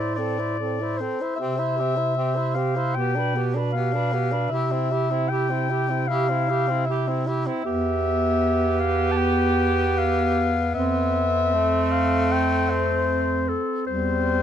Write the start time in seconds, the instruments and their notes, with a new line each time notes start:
Already playing: bass clarinet A2, tenor saxophone E4, clarinet D5
0.00 alto saxophone C5
0.15 tenor saxophone C4, alto saxophone A4, clarinet D5
0.39 tenor saxophone E4, alto saxophone C5
0.59 tenor saxophone C4, alto saxophone A4
0.81 tenor saxophone E4, alto saxophone C5
0.98 tenor saxophone C4, alto saxophone A4, clarinet C5
1.21 tenor saxophone E4, alto saxophone C5
1.36 bass clarinet C3, alto saxophone G4, clarinet E5
1.40 tenor saxophone C4
1.56 tenor saxophone E4, alto saxophone C5
1.77 tenor saxophone C4, alto saxophone G4
1.96 tenor saxophone E4, alto saxophone C5
2.16 tenor saxophone C4, alto saxophone G4
2.35 tenor saxophone E4, alto saxophone C5
2.54 tenor saxophone C4, alto saxophone G4, clarinet F5
2.76 tenor saxophone E4, alto saxophone C5
2.94 bass clarinet B2, tenor saxophone B3, alto saxophone G4, clarinet G5
3.15 tenor saxophone D4, alto saxophone B4
3.35 tenor saxophone B3, alto saxophone G4
3.55 tenor saxophone D4, alto saxophone B4
3.72 tenor saxophone B3, clarinet F5
3.77 alto saxophone G4
3.93 tenor saxophone D4, alto saxophone B4
4.13 tenor saxophone B3, alto saxophone G4
4.32 tenor saxophone D4, alto saxophone B4
4.50 bass clarinet C3, tenor saxophone E4, alto saxophone G4, clarinet E5
4.71 tenor saxophone C4, alto saxophone E4
4.91 tenor saxophone E4, alto saxophone G4
5.11 tenor saxophone C4, alto saxophone E4
5.29 tenor saxophone E4, alto saxophone G4, clarinet G5
5.50 tenor saxophone C4, alto saxophone E4
5.69 tenor saxophone E4, alto saxophone G4
5.89 tenor saxophone C4, alto saxophone E4
6.08 tenor saxophone E4, alto saxophone G4, clarinet F5
6.29 tenor saxophone C4, alto saxophone E4
6.48 tenor saxophone E4, alto saxophone G4
6.68 tenor saxophone C4, alto saxophone E4
6.85 tenor saxophone E4, clarinet E5
6.89 alto saxophone G4
7.08 tenor saxophone C4, alto saxophone E4
7.27 tenor saxophone E4, alto saxophone G4
7.46 tenor saxophone C4, alto saxophone E4
7.63 bass clarinet E2, tenor saxophone B3, alto saxophone G4, clarinet E5
8.80 clarinet F5
9.12 clarinet A5
9.17 clarinet G5
9.98 clarinet F5
10.74 bass clarinet F2, alto saxophone C4, clarinet E5
11.54 tenor saxophone A3
11.92 clarinet F5
12.32 clarinet G5
12.70 clarinet C5
13.49 clarinet A4
13.87 bass clarinet E2, tenor saxophone G3, clarinet C5